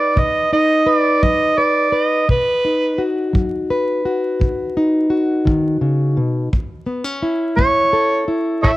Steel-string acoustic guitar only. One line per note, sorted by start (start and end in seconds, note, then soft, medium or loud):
0.00 0.51 D#4 medium
0.00 0.85 B4 medium
0.16 0.80 B2 medium
0.53 2.25 D#4 medium
0.86 1.57 B4 medium
1.23 1.87 F#3 medium
1.58 1.91 B4 medium
1.92 2.24 B4 medium
2.28 2.92 B2 medium
2.65 4.76 D#4 medium
2.98 4.04 F#4 medium
3.33 3.98 F#3 medium
3.70 6.49 B4 medium
4.05 5.09 F#4 medium
4.40 5.04 B2 medium
4.77 6.49 D#4 medium
5.10 6.48 F#4 medium
5.45 5.81 D#3 medium
5.81 6.17 C#3 medium
6.17 6.52 B2 medium
6.53 7.17 A2 medium
6.86 7.04 B3 medium
7.04 8.77 C#4 medium
7.23 8.27 E4 medium
7.57 8.22 A3 medium
7.93 8.77 A4 medium
8.28 8.77 E4 medium
8.63 8.77 A2 medium